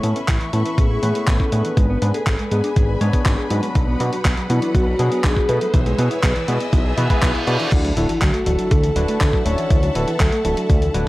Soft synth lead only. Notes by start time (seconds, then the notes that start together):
0.53 E4
0.78 G#4
1.27 A4
1.77 B4
2.14 A4
2.51 G#4
4.50 E4
4.75 F#4
5.24 G#4
5.49 A4
5.74 B4
7.97 E4
8.22 F#4
8.71 A4
9.21 A4
9.45 C#5
9.95 B4
10.20 A4
10.69 A4